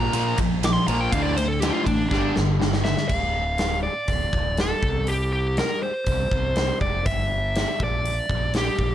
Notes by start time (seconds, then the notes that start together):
Already playing: A#2 F3 A#3 A#5
0.13 A#2 F3 A#3, ride
0.38 A#1 A#2 F3, kick, ride
0.63 A#2 F3 D6, snare, ride
0.73 C6
0.88 A#1 A#2 F3 A#3 A#5, ride
1.00 G5
1.12 D2 A2 D3 F5, kick, ride
1.22 D5
1.37 D2 A2 C5, ride
1.48 A4
1.60 D2 A2 D3 G4, snare, ride
1.73 F4
1.86 A1 D2 A2 D4, kick, ride
2.09 G1 G2 D3 G3 D4, kick, snare
2.36 G1 G2 D3, snare
2.60 G2 D3, snare
2.73 snare
2.84 G2 D3 E5, snare
2.97 snare
3.08 D1 F5, kick, crash
3.58 snare, open hi-hat
3.83 D5
4.08 D1, kick, open hi-hat
4.33 D1, kick
4.57 A4, snare, open hi-hat
4.83 C2, kick
5.07 G4, open hi-hat
5.33 G4
5.57 A#4, snare, open hi-hat
5.83 C5
6.06 C2, kick, open hi-hat
6.31 C2, kick
6.56 snare, open hi-hat
6.81 F1 D5, kick
7.06 G1 E5, kick, open hi-hat
7.56 snare, open hi-hat
7.80 A#1 D5, kick
8.06 open hi-hat
8.29 A#1, kick
8.54 G4, snare, open hi-hat
8.79 A#1, kick